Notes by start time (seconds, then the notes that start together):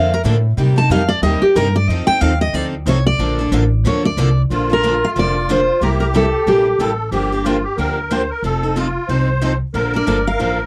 Already playing: F2 D3 F3 A#3 D4 A4 F5
0.14 A#4
0.25 A2 D3 F3 A#3 D4 A4
0.57 C3 G3 A#3 D#4 G4
0.76 A#3 D#4 G4 A5
0.89 F2 C3 G3 A#3 D#4 G4 F5
1.08 D5
1.22 D#2 C3 G3 A#3 D#4 G4 D#5
1.42 G4, muted upright bass stroke
1.55 G2 C3 G3 A#3 D#4 G4 A#4
1.76 D5
1.88 F2 F3 C4 D#4 A4 D#5
2.07 C4 D#4 A4 G5, muted upright bass stroke
2.21 D#2 F3 C4 D#4 A4 F5
2.41 D#5
2.53 D2 F3 C4 D#4 A4 D5
2.86 C2 F3 C4 D#4 A4 C#5
3.06 D5
3.18 A#1 D3 F3 A#3 D4 A4
3.39 A#3 D4 A4
3.52 A1 D3 F3 A#3 D4 A4
3.84 D2 D3 F3 A#3 D4 A4 C#5
4.05 D5
4.17 C2 D3 F3 A#3 D4 A4
4.50 A#1 D3 F3 A#3 D4 F4 A4
4.70 A#3 D4 A4 A#4
4.83 D3 F3 A#3 D4 A4
5.04 F5
5.16 F1 D3 F3 A#3 D4 A4 D5
5.49 D3 F3 A#3 D4 A4 C5
5.81 C2 C3 G3 A#3 E4 G4 A#4
6.00 A#3 E4 G4 A#4
6.14 C3 G3 A#3 E4 G4 A4
6.46 A#1 C3 G3 A#3 E4 G4
6.79 A1 C3 G3 A#3 E4 G4 A4
7.11 G1 D3 F3 A#3 D4 G4
7.32 A#3 D4 G4
7.43 D3 F3 A#3 D4 F4 G4
7.63 G4
7.77 D2 D3 F3 A#3 D4 G4 A#4
8.11 D3 F3 A#3 D4 G4 C5
8.30 A#4
8.42 F1 F3 C4 D#4 A4
8.63 C4 D#4 A4
8.76 F3 C4 D#4 F4 A4
9.09 C2 F3 C4 D#4 A4 C5
9.42 F3 C4 D#4 A4
9.74 A#1 D3 F3 A#3 D4 A4 A#4
9.94 A#3 D4 A4 D5
10.07 G1 D3 F3 A#3 D4 A4
10.27 F5
10.39 A1 D3 F3 A#3 D4 A4